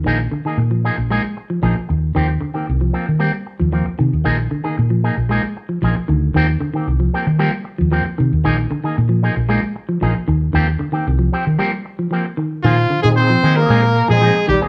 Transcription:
<<
  \new Staff \with { instrumentName = "Trumpet" } { \time 4/4 \key bes \mixolydian \tempo 4 = 114 r1 | r1 | r1 | r1 |
r1 | r1 | f'8. aes'16 c''8. bes'4 aes'8. g'8 | }
  \new Staff \with { instrumentName = "Tonewheel organ" } { \time 4/4 \key bes \mixolydian r1 | r1 | r1 | r1 |
r1 | r1 | r8. <c' ees' aes'>8 r8 <c' ees' aes'>8 r8 <c' ees' aes'>8 r8 <c' ees' aes'>16 | }
  \new Staff \with { instrumentName = "Clean electric guitar" } { \time 4/4 \key bes \mixolydian <f bes ees' aes'>16 r8 <bes ees' aes'>16 r8 <f bes ees' aes'>16 r16 <f bes ees' aes'>16 r8. <f bes ees' aes'>16 r8. | <f bes c' g'>16 r8 <bes c' g'>16 r8 <f bes c'>16 r16 <bes c' g'>16 r8. <f bes c'>16 r8. | <f bes ees' aes'>16 r8 <bes ees' aes'>16 r8 <bes ees' aes'>16 r16 <f bes ees' aes'>16 r8. <f bes ees' aes'>16 r8. | <f bes c' g'>16 r8 <bes c' g'>16 r8 <f bes c' g'>16 r16 <f bes c' g'>16 r8. <f bes c' g'>16 r8. |
<f bes ees' aes'>16 r8 <bes ees' aes'>16 r8 <f bes ees' aes'>16 r16 <f bes ees' aes'>16 r8. <f bes ees' aes'>16 r8. | <f bes c' g'>16 r8 <bes c' g'>16 r8 <f c' g'>16 r16 <f bes c' g'>16 r8. <f bes c' g'>16 r8. | <f bes aes'>16 r4 r16 <f bes ees' aes'>16 r16 <f bes ees' aes'>16 r8 <bes ees' aes'>16 <f bes ees' aes'>16 r8 <bes ees' aes'>16 | }
  \new Staff \with { instrumentName = "Trombone" } { \clef bass \time 4/4 \key bes \mixolydian r1 | r1 | r1 | r1 |
r1 | r1 | f8. aes16 c'8. bes4 aes8. g8 | }
  \new Staff \with { instrumentName = "Clean electric guitar" } { \clef bass \time 4/4 \key bes \mixolydian ees8 d16 ees8 f8 r16 aes8 r16 f16 f8 r8 | ees8 d16 ees8 f8 r16 g8 r16 f16 f8 ees8 | ees8 d16 ees8 f8 r16 aes8 r16 f16 f8 ees8 | ees8 d16 ees8 f8 r16 g8 r16 f16 f8 ees8 |
ees8 d16 ees8 f8 r16 aes8 r16 f16 f8 ees8 | ees8 d16 ees8 f8 r16 g8 r16 f16 f8 ees8 | ees8 d16 ees8 f8 r16 aes8 r16 f16 f8 ees8 | }
  \new Staff \with { instrumentName = "Fingered electric bass" } { \clef bass \time 4/4 \key bes \mixolydian bes,,8 r8 bes,8. bes,,8 r8. bes,,16 r16 ees,8 | ees,8 r8 c,8 r16 ees8 r8 ees,8 r16 c16 ees,16 | bes,,8 r8 bes,8. bes,,8 r8. bes,,16 r16 d,8 | ees,8 r8 c,8 r16 ees8 r8 ees,8 r16 c16 ees,16 |
bes,,8 r8 bes,8. bes,,8 r8. bes,,16 r16 ees,8 | ees,8 r8 c,8 r16 ees16 r2 | bes,8 r16 bes,8. ees8 bes,8. bes,8 r16 bes,,16 r16 | }
>>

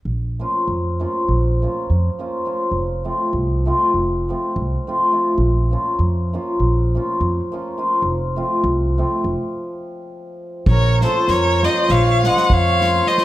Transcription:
<<
  \new Staff \with { instrumentName = "Violin" } { \time 9/8 \key bes \minor \tempo 4. = 68 r1 r8 | r1 r8 | r1 r8 | r1 r8 |
des''8 c''8 des''8 ees''8 f''8 ges''8 f''4 ees''8 | }
  \new Staff \with { instrumentName = "Accordion" } { \time 9/8 \key bes \minor r1 r8 | r1 r8 | r1 r8 | r1 r8 |
bes'8 a'8 bes'8 c''8 des''8 ees''8 des''4 c''8 | }
  \new Staff \with { instrumentName = "Hammered dulcimer" } { \time 9/8 \key bes \minor r8 <f bes des' f'>8 r8 <f bes des' f'>8 r8 <f bes des' f'>8 r8 <f bes des' f'>8 <f bes des' f'>8 | r8 <f a c' f'>8 r8 <f a c' f'>8 r8 <f a c' f'>8 r8 <f a c' f'>8 <f a c' f'>8 | r8 <f bes des' f'>8 r8 <f bes des' f'>8 r8 <f bes des' f'>8 r8 <f bes des' f'>8 <f bes des' f'>8 | r8 <f a c' f'>8 r8 <f a c' f'>8 r2 r8 |
r8 <f bes des' f'>8 r8 <f bes des' f'>8 r8 <f bes des' f'>8 r8 <f bes des' f'>8 <f bes des' f'>8 | }
  \new Staff \with { instrumentName = "Upright bass" } { \clef bass \time 9/8 \key bes \minor bes,,4 f,4 bes,,4 f,8 r4 | f,,4 c,4 f,,4 c,8 r4 | bes,,4 f,4 bes,,4 f,8 r4 | f,,4 c,4 f,,16 r2 r16 |
bes,,4 f,4 bes,,4 f,4. | }
  \new DrumStaff \with { instrumentName = "Drums" } \drummode { \time 9/8 r4 r4 r4 r4. | r4 r4 r4 r4. | r4 r4 r4 r4. | r4 r4 r4 r4. |
bd8 sn8 sn8 sn8 sn8 sn16 sn16 bd8 sn8 sn16 sn16 | }
>>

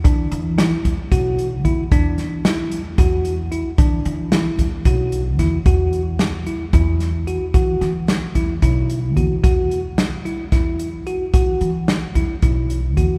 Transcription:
<<
  \new Staff \with { instrumentName = "Tine electric piano" } { \time 7/8 \key c \lydian \tempo 4 = 112 d'4 e'4 fis'4 e'8 | d'4 e'4 fis'4 e'8 | d'4 e'4 fis'4 e'8 | fis'4 r8 e'8 e'4 fis'8 |
fis'4 r8 e'8 e'4 fis'8 | fis'4 r8 e'8 e'4 fis'8 | fis'4 r8 e'8 e'4 fis'8 | }
  \new Staff \with { instrumentName = "Upright bass" } { \clef bass \time 7/8 \key c \lydian e8 e4 e,8 b,,4 e,8 | e,2 e,4. | e8 e4 e,8 b,,4 e,8 | e,2 e,4. |
e8 e4 e,8 b,,4 e,8 | e,2 e,4. | e8 e4 e,8 b,,4 e,8 | }
  \new DrumStaff \with { instrumentName = "Drums" } \drummode { \time 7/8 <hh bd>8 hh8 <hh sn>8 <hh bd>8 <hh bd>8 hh8 <hh bd>8 | <hh bd>8 <hh sn>8 <hh sn>8 hh8 <hh bd>8 hh8 hh8 | <hh bd>8 hh8 <hh sn>8 <hh bd>8 <hh bd>8 hh8 <hh bd sn>8 | <hh bd>8 hh8 <hh sn>8 hh8 <hh bd>8 <hh sn>8 hh8 |
<hh bd>8 <hh sn>8 <hh sn>8 <hh bd>8 <hh bd>8 hh8 <hh bd>8 | <hh bd>8 hh8 <hh sn>8 hh8 <hh bd sn>8 hh8 hh8 | <hh bd>8 hh8 <hh sn>8 <hh bd>8 <hh bd>8 hh8 <hh bd>8 | }
>>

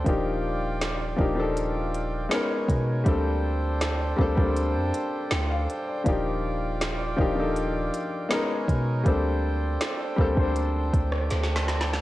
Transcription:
<<
  \new Staff \with { instrumentName = "Harmonium" } { \time 4/4 \key bes \major \tempo 4 = 80 <f' d'' g''>2. <dis' ais' cis'' gis''>4 | <d' a' c'' g''>1 | <f' d'' g''>2. <dis' ais' cis'' gis''>4 | <d' a' c'' g''>1 | }
  \new Staff \with { instrumentName = "Grand piano" } { \time 4/4 \key bes \major << { r1 | r2. g''16 f''8 d''16~ | d''16 r2. r8. | r1 | } \\ { <f bes d' ees' g'>4~ <f bes d' ees' g'>16 r16 <f bes d' ees' g'>16 <f bes d' ees' a'>4~ <f bes d' ees' a'>16 <gis b cis' dis' ais'>8. r16 | <g bes c' d' a'>4~ <g bes c' d' a'>16 r16 <g bes c' d' a'>16 <g bes c' d' a'>4. r8. | <f bes d' ees' g'>4~ <f bes d' ees' g'>16 r16 <f bes d' ees' g'>16 <f bes d' ees' a'>4~ <f bes d' ees' a'>16 <gis b cis' dis' ais'>8. r16 | <g bes c' d' a'>4~ <g bes c' d' a'>16 r16 <g bes c' d' a'>16 <g bes c' d' c''>4. r8. | } >> }
  \new Staff \with { instrumentName = "808-style bass" } { \clef bass \time 4/4 \key bes \major ees,,4. ees,,4. r8 b,8 | d,4. d,16 d,8 f,16 r8 d,8 r8 | ees,,4. ees,,4 r4 b,8 | d,4 r8 d,16 d,8. d,8 d,4 | }
  \new DrumStaff \with { instrumentName = "Drums" } \drummode { \time 4/4 <hh bd>4 <hh sn>8 bd8 hh8 hh8 <hh sn>8 <hh bd>8 | <hh bd>4 <hh sn>8 bd16 bd16 hh8 hh8 <hh sn>8 hh8 | <hh bd>4 <hh sn>8 bd8 hh8 hh8 <hh sn>8 <hh bd>8 | <hh bd>4 <hh sn>8 bd16 bd16 hh8 <hh bd>16 ss16 \tuplet 3/2 { <hh sn>16 sn16 sn16 <hh sn>16 sn16 sn16 } | }
>>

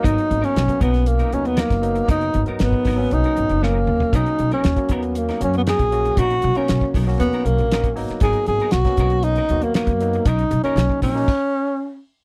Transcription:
<<
  \new Staff \with { instrumentName = "Clean electric guitar" } { \time 4/4 \key b \major \tempo 4 = 118 <fis b dis' ais'>16 r8 <b dis' ais'>16 r8 <fis b dis' ais'>16 r8 <b dis' ais'>16 r8 <fis b dis' ais'>16 r8. | <fis b dis' ais'>16 r8 <b dis' ais'>16 r8 <fis b dis' ais'>16 r8 <b dis' ais'>16 r8 <fis b dis' ais'>16 r8. | <fis b dis' ais'>16 r8 <b dis' ais'>16 r8 <fis b dis' ais'>16 r8 <b dis' ais'>16 r8 <fis b dis' ais'>16 r8. | <fis b dis' ais'>16 r8 <b dis' ais'>16 r8 <fis b dis' ais'>16 r8 <b dis' ais'>16 r8 <fis b dis' ais'>16 r8. |
<fis b dis' ais'>16 r8 <b dis' ais'>16 r8 <fis b dis' ais'>16 r8 <b dis' ais'>16 r8 <fis b dis' ais'>16 r8. | <fis cis' dis' ais'>16 r8 <cis' dis' ais'>16 r8 <fis cis' dis' ais'>16 r2 r16 | }
  \new Staff \with { instrumentName = "Tenor saxophone" } { \time 4/4 \key b \major dis'8. cis'8. b8 ais8 cis'16 b16 ais4 | dis'8. r16 b4 dis'4 ais4 | dis'8. cis'8. b8 ais8 cis'16 b16 gis'4 | fis'8. cis'8. r8 b8 ais4 r8 |
gis'8 gis'8 fis'4 dis'8. ais16 ais4 | dis'8. cis'8. cis'2 r8 | }
  \new Staff \with { instrumentName = "Tine electric piano" } { \time 4/4 \key b \major <fis ais b dis'>4~ <fis ais b dis'>16 <fis ais b cis'>4~ <fis ais b cis'>16 <fis ais b dis'>4 <fis ais b dis'>8~ | <fis ais b dis'>8. <fis b dis' ais'>4 <fis ais b cis'>4~ <fis ais b cis'>16 <b, fis ais cis'>4 | <fis ais cis' dis'>4~ <fis ais cis' dis'>16 <fis ais cis' fis'>4~ <fis ais cis' fis'>16 <fis ais cis' fis'>4 <fis ais cis' fis'>8~ | <fis ais cis' fis'>8. <fis ais cis' fis'>4 <fis ais cis' fis'>4~ <fis ais cis' fis'>16 <fis ais cis' fis'>8 <fis ais b dis'>8~ |
<fis ais b dis'>4~ <fis ais b dis'>16 <fis ais b cis'>4~ <fis ais b cis'>16 <fis ais b fis'>4 <fis ais b dis'>8 | r8. <fis ais cis' dis'>4 <fis ais cis' dis'>16 r2 | }
  \new Staff \with { instrumentName = "Upright bass" } { \clef bass \time 4/4 \key b \major gis,,16 r16 gis,,16 r16 b,,16 r16 b,,4 dis,8. fis,,8. | fis,,8 gis,,16 r16 gis,,16 r16 gis,,8 b,,16 r16 gis,,16 fis,,8. dis,16 r16 | b,,16 r16 b,,16 r16 dis,16 r16 dis,4 fis,8. ais,,8. | ais,,8 b,,16 r16 b,,16 r16 b,,8 dis,16 r16 b,,16 ais,,8. gis,,16 r16 |
gis,,16 r16 gis,,16 r16 b,,16 r16 b,,4 dis,8. fis,8. | b,,8 b,,16 r16 b,,16 r16 ais,,8 r2 | }
  \new DrumStaff \with { instrumentName = "Drums" } \drummode { \time 4/4 <hh bd>16 hh16 hh16 hh16 <hh sn>16 <hh bd>16 <hh bd>16 <hh sn>16 hh16 hh16 hh16 hh16 <hh sn>16 <hh bd sn>16 hh16 hh16 | <hh bd>16 hh16 hh16 hh16 <hh sn>16 bd16 <hho bd>8 hh16 hh16 hh16 hh16 sn8 toml16 tomfh16 | <hh bd>16 hh16 hh16 hh16 <hh sn>16 <hh bd>16 <hh bd>16 hh16 hh16 <hh sn>16 hh16 hh16 <hh sn>16 <hh bd>16 hh16 hh16 | <hh bd>16 hh16 hh16 hh16 <hh sn>16 bd16 <hho bd>16 sn16 hh16 hh16 hh16 hh16 <hh sn>16 <hh bd>16 hho16 <hh sn>16 |
<hh bd>16 hh16 hh16 hh16 <hh sn>16 <hh bd sn>16 <hh bd>16 hh16 hh16 hh16 hh16 hh16 <hh sn>16 <hh bd>16 hh16 hh16 | <hh bd>16 hh16 hh16 hh16 <hh sn>16 bd16 <hho bd>16 sn16 <cymc bd>4 r4 | }
>>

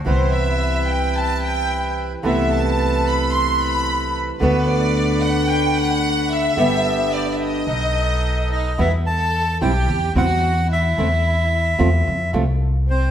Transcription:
<<
  \new Staff \with { instrumentName = "Bandoneon" } { \time 4/4 \key b \phrygian \tempo 4 = 110 r1 | r1 | r1 | r2. r8 dis''8 |
\key e \minor e''8 a''4 g''4 fis''4 e''8~ | e''2~ e''8 r4 c''8 | }
  \new Staff \with { instrumentName = "Violin section" } { \time 4/4 \key b \phrygian c''8 e''4 g''8 a''8 g''4 r8 | e''8 a''4 b''8 c'''8 b''4 r8 | b'8 d''4 fis''8 g''8 fis''4 e''8~ | e''4 d''16. e''32 ees''2 dis'8 |
\key e \minor e'8 a'4 g'4 fis'4 e'8~ | e'2~ e'8 r4 c'8 | }
  \new Staff \with { instrumentName = "Bandoneon" } { \time 4/4 \key b \phrygian <e' b'>1 | <a' b'>1 | <d' fis' b'>1 | <b g' a'>2 <b dis' a'>2 |
\key e \minor r1 | r1 | }
  \new Staff \with { instrumentName = "Nylon-string guitar" } { \time 4/4 \key b \phrygian <c e g b e'>1 | <c e a b e'>1 | <d a b fis'>1 | <d g b g'>2 r2 |
\key e \minor <b, e g b e'>8 r4 <c e g c' e'>8 r8 <c e g c' e'>8 r4 | <e a c' e'>8 r4 <c f a c' f'>8 r8 <c f a c' f'>8 r4 | }
  \new Staff \with { instrumentName = "Upright bass" } { \clef bass \time 4/4 \key b \phrygian c,1 | c,1 | d,1 | g,,2 b,,2 |
\key e \minor e,4. b,,8 e,8 e,4. | e,4. e,8 f,8 c,4. | }
>>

